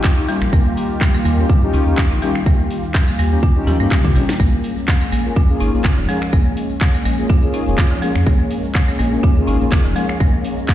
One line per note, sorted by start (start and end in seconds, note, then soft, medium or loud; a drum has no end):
0.00 4.36 D#3 medium
0.00 4.35 A#3 medium
0.00 4.36 F4 medium
0.00 4.36 G4 medium
0.00 finger snap loud
0.00 clap loud
0.04 0.16 F4 medium
0.04 kick loud
0.04 shaker soft
0.18 0.23 D#4 medium
0.28 0.40 G3 loud
0.28 0.38 C#4 medium
0.28 0.38 D#4 medium
0.28 0.38 F4 medium
0.28 0.38 G4 loud
0.28 open hi-hat medium
0.28 shaker medium
0.42 0.50 A#1 medium
0.42 finger snap medium
0.42 shaker soft
0.53 0.63 D#2 loud
0.53 0.65 A#3 loud
0.53 kick loud
0.53 shaker soft
0.77 open hi-hat medium
0.77 shaker medium
0.91 shaker soft
1.01 1.08 G3 medium
1.01 finger snap medium
1.01 kick loud
1.01 clap loud
1.01 shaker soft
1.14 1.24 A#3 medium
1.25 1.44 D#2 medium
1.25 1.38 A#3 loud
1.25 open hi-hat medium
1.25 shaker medium
1.39 1.46 C#4 medium
1.39 1.46 D#4 medium
1.39 1.46 F4 medium
1.39 1.46 G4 loud
1.39 shaker soft
1.50 1.68 G2 medium
1.50 1.61 F4 medium
1.50 kick loud
1.50 shaker soft
1.63 1.84 C#4 loud
1.63 1.84 D#4 medium
1.63 1.84 F4 medium
1.63 1.84 G4 loud
1.73 1.83 C#2 medium
1.73 1.86 D#4 medium
1.73 open hi-hat medium
1.73 shaker medium
1.86 1.95 D#2 medium
1.86 1.99 C#4 medium
1.86 1.99 D#4 medium
1.86 1.99 F4 medium
1.86 1.99 G4 loud
1.86 shaker medium
1.98 2.10 F4 medium
1.98 finger snap loud
1.98 kick loud
1.98 clap loud
1.98 shaker soft
2.11 2.19 A#1 loud
2.11 2.17 D#4 medium
2.22 2.34 G3 medium
2.22 2.31 C#4 loud
2.22 2.31 D#4 medium
2.22 2.31 F4 medium
2.22 2.31 G4 loud
2.22 open hi-hat medium
2.22 shaker medium
2.35 finger snap medium
2.35 shaker medium
2.46 2.56 D#2 loud
2.46 2.59 A#3 loud
2.46 kick loud
2.46 shaker soft
2.71 open hi-hat medium
2.71 shaker medium
2.84 shaker soft
2.94 3.02 G3 medium
2.94 finger snap loud
2.94 kick loud
2.94 clap loud
2.94 shaker soft
3.08 3.18 A#3 medium
3.18 3.37 D#2 medium
3.18 3.31 A#3 loud
3.18 open hi-hat loud
3.18 shaker medium
3.32 3.40 C#4 medium
3.32 3.40 D#4 medium
3.32 3.40 F4 medium
3.32 3.40 G4 medium
3.32 shaker medium
3.43 3.55 F4 medium
3.43 kick loud
3.43 shaker soft
3.56 3.77 C#4 loud
3.56 3.77 D#4 medium
3.56 3.77 F4 medium
3.56 3.77 G4 loud
3.67 3.77 D#2 loud
3.67 3.79 G4 medium
3.67 open hi-hat medium
3.67 high tom medium
3.67 shaker medium
3.80 3.88 G2 medium
3.80 3.91 A#3 loud
3.80 3.93 C#4 medium
3.80 3.93 D#4 medium
3.80 3.93 F4 medium
3.80 3.93 G4 loud
3.80 shaker soft
3.91 4.03 G3 medium
3.91 finger snap loud
3.91 kick loud
3.91 clap loud
3.91 mid tom medium
3.91 shaker soft
4.04 4.14 F4 medium
4.04 kick medium
4.04 mid tom medium
4.16 4.25 A#1 loud
4.16 4.28 G3 medium
4.16 4.25 C#4 medium
4.16 4.25 D#4 medium
4.16 4.25 F4 medium
4.16 4.25 G4 loud
4.16 open hi-hat loud
4.16 shaker loud
4.29 finger snap medium
4.29 snare medium
4.29 shaker soft
4.39 4.49 A#1 loud
4.39 10.74 G#3 medium
4.39 10.74 A#3 medium
4.39 4.52 A#3 loud
4.39 10.74 C#4 medium
4.39 kick loud
4.39 shaker soft
4.63 open hi-hat medium
4.63 shaker medium
4.77 shaker medium
4.88 4.95 G#3 medium
4.88 finger snap loud
4.88 kick loud
4.88 clap loud
4.88 shaker soft
5.01 5.11 A#3 medium
5.12 5.31 A#1 medium
5.12 5.25 A#3 medium
5.12 open hi-hat loud
5.12 shaker loud
5.25 5.33 A#3 medium
5.25 5.33 C#4 medium
5.25 5.33 F4 medium
5.25 5.33 G#4 medium
5.25 shaker medium
5.36 5.55 D#2 medium
5.36 5.48 F4 medium
5.36 kick loud
5.36 shaker soft
5.49 5.71 A#3 loud
5.49 5.71 C#4 medium
5.49 5.71 F4 medium
5.49 5.71 G#4 loud
5.60 5.70 G#1 medium
5.60 5.72 D#4 medium
5.60 open hi-hat medium
5.60 shaker loud
5.74 5.82 A#1 medium
5.74 5.86 A#3 medium
5.74 5.86 C#4 medium
5.74 5.86 F4 medium
5.74 5.86 G#4 loud
5.74 shaker medium
5.84 5.97 F4 medium
5.84 finger snap loud
5.84 kick loud
5.84 clap loud
5.84 shaker soft
5.98 6.06 F1 loud
5.98 6.08 F3 medium
6.09 6.21 G#3 loud
6.09 6.18 A#3 medium
6.09 6.18 C#4 medium
6.09 6.18 F4 medium
6.09 6.18 G#4 loud
6.09 open hi-hat medium
6.09 shaker medium
6.22 finger snap medium
6.22 shaker medium
6.33 6.43 A#1 loud
6.33 6.46 A#3 loud
6.33 kick loud
6.33 shaker soft
6.57 open hi-hat loud
6.57 shaker loud
6.71 shaker medium
6.81 6.88 G#3 medium
6.81 finger snap loud
6.81 kick loud
6.81 clap loud
6.81 shaker soft
6.94 7.04 A#3 medium
7.05 7.24 A#1 medium
7.05 7.18 A#3 loud
7.05 open hi-hat loud
7.05 shaker medium
7.19 7.26 A#3 medium
7.19 7.26 C#4 medium
7.19 7.26 F4 medium
7.19 7.26 G#4 medium
7.19 shaker medium
7.29 7.42 F4 medium
7.29 kick loud
7.29 shaker soft
7.43 7.64 A#3 medium
7.43 7.64 C#4 medium
7.43 7.64 F4 medium
7.43 7.64 G#4 loud
7.53 7.66 D#4 medium
7.53 open hi-hat medium
7.53 shaker loud
7.67 7.76 F1 loud
7.67 7.80 A#3 medium
7.67 7.80 C#4 medium
7.67 7.80 F4 medium
7.67 7.80 G#4 loud
7.67 shaker medium
7.78 7.90 F4 medium
7.78 finger snap loud
7.78 kick loud
7.78 clap loud
7.78 shaker soft
7.91 8.01 F3 medium
8.02 8.14 G#3 loud
8.02 8.12 A#3 medium
8.02 8.12 C#4 medium
8.02 8.12 F4 medium
8.02 8.12 G#4 loud
8.02 open hi-hat loud
8.02 shaker medium
8.15 8.24 F2 medium
8.15 finger snap medium
8.15 shaker medium
8.26 8.36 A#1 loud
8.26 8.39 A#3 loud
8.26 kick loud
8.26 shaker soft
8.51 open hi-hat medium
8.51 shaker medium
8.64 shaker medium
8.75 8.82 G#3 medium
8.75 finger snap loud
8.75 kick loud
8.75 clap loud
8.75 shaker soft
8.88 8.98 A#3 medium
8.98 9.18 A#1 medium
8.98 9.12 A#3 loud
8.98 open hi-hat loud
8.98 shaker medium
9.12 9.20 A#3 medium
9.12 9.20 C#4 medium
9.12 9.20 F4 medium
9.12 9.20 G#4 medium
9.12 shaker medium
9.23 9.42 D#2 medium
9.23 9.35 F4 medium
9.23 kick loud
9.23 shaker soft
9.37 9.58 A#3 loud
9.37 9.58 C#4 medium
9.37 9.58 F4 medium
9.37 9.58 G#4 loud
9.47 9.58 G#1 medium
9.47 9.59 D#4 medium
9.47 open hi-hat medium
9.47 shaker loud
9.61 9.69 A#1 medium
9.61 9.73 A#3 medium
9.61 9.73 C#4 medium
9.61 9.73 F4 medium
9.61 9.73 G#4 loud
9.61 shaker medium
9.72 9.84 F4 medium
9.72 finger snap loud
9.72 kick loud
9.72 clap loud
9.72 shaker soft
9.85 9.93 F1 medium
9.85 9.95 F3 medium
9.96 10.08 G#3 loud
9.96 10.05 A#3 medium
9.96 10.05 C#4 medium
9.96 10.05 F4 medium
9.96 10.05 G#4 loud
9.96 open hi-hat loud
9.96 shaker medium
10.09 finger snap medium
10.09 shaker medium
10.20 10.30 A#1 loud
10.20 10.33 A#3 loud
10.20 kick loud
10.20 shaker soft
10.45 open hi-hat medium
10.45 shaker loud
10.58 shaker medium
10.68 10.74 G#3 medium
10.68 finger snap loud
10.68 kick loud
10.68 clap loud
10.68 shaker soft